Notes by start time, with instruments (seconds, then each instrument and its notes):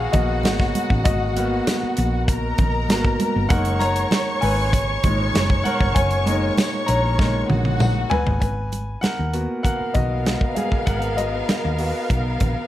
Already playing: grand piano A#3 B3 F#4 G#4 A#4 B4 C#5 F5 F#5 G#5 A#5, violin section F#4 F#5
0.12 fingered electric bass A#1, grand piano A#3 B3 F#4 D#5, kick, closed hi-hat, low conga
0.43 fingered electric bass G#1, snare, closed hi-hat, tambourine, high conga
0.60 kick, snare
0.75 closed hi-hat, high conga
0.90 fingered electric bass A1, kick
1.04 fingered electric bass G#1, grand piano F#4 D#5, kick, closed hi-hat, muted conga
1.36 grand piano A#3 B3 F#4, closed hi-hat, muted conga
1.67 snare, closed hi-hat, tambourine, high conga
1.83 muted fingered electric bass stroke
1.97 fingered electric bass A#1, closed hi-hat
2.28 violin section A#4 A#5, kick, closed hi-hat, muted conga
2.58 fingered electric bass A#1, kick, closed hi-hat, low conga
2.89 fingered electric bass G#1, grand piano A#3 B3 F#4, snare, closed hi-hat, tambourine, high conga
3.05 kick
3.20 closed hi-hat, high conga
3.36 fingered electric bass G1
3.49 fingered electric bass F#1, grand piano G#3 A#3 D#4 A#4 F#5, violin section C#5 C#6, kick, closed hi-hat, muted conga
3.65 closed hi-hat
3.79 grand piano C#5 A#5, closed hi-hat, muted conga
3.96 closed hi-hat
4.11 snare, closed hi-hat, tambourine, high conga
4.41 fingered electric bass G#1, grand piano B4 G#5, open hi-hat
4.72 kick, closed hi-hat, low conga
5.03 fingered electric bass G#1, grand piano A#2 G#3 D#4, kick, closed hi-hat, low conga
5.34 fingered electric bass F#1, snare, closed hi-hat, tambourine, high conga
5.50 kick
5.64 grand piano A#4 F#5, closed hi-hat, high conga
5.81 fingered electric bass G1, kick
5.94 fingered electric bass F#1, grand piano C#5 G#5, kick, closed hi-hat, muted conga
6.11 closed hi-hat
6.26 grand piano G#3 A#3 D#4, closed hi-hat, muted conga
6.57 snare, closed hi-hat, tambourine, high conga
6.86 fingered electric bass A#1, grand piano C#5 A#5, closed hi-hat
7.18 grand piano G#3 A#3 D#4, kick, snare, muted conga
7.50 fingered electric bass A#1, violin section F#4 F#5, high tom, low conga
7.65 high tom
7.80 mid tom, tambourine, high conga
8.10 grand piano B4 G#5, muted fingered electric bass stroke, floor tom, high conga
8.27 fingered electric bass G#1, floor tom
8.40 fingered electric bass G#1, grand piano B4 G#5, kick, closed hi-hat, muted conga
8.72 closed hi-hat, muted conga
9.01 grand piano A#4 F#5, muted fingered electric bass stroke, snare, closed hi-hat, high conga
9.19 fingered electric bass D#2
9.33 grand piano A#3 B3 F#4, closed hi-hat
9.63 violin section B3 A#4 F5, grand piano A#4 F#5, kick, closed hi-hat, muted conga, low conga
9.81 muted fingered electric bass stroke
9.94 fingered electric bass B1, grand piano F#4 D#5, kick, closed hi-hat, low conga
10.25 snare, closed hi-hat, high conga
10.41 kick
10.55 grand piano G#4 F5, closed hi-hat, high conga
10.72 kick
10.86 fingered electric bass G#1, grand piano A#4 F#5, kick, closed hi-hat, muted conga
11.02 closed hi-hat
11.17 grand piano F#4 D#5, closed hi-hat, muted conga
11.49 muted fingered electric bass stroke, snare, closed hi-hat, high conga
11.65 fingered electric bass D#2
11.78 grand piano B3 F#4 A#4, open hi-hat
12.10 fingered electric bass B1, kick, closed hi-hat, muted conga
12.40 fingered electric bass A#1, kick, closed hi-hat, low conga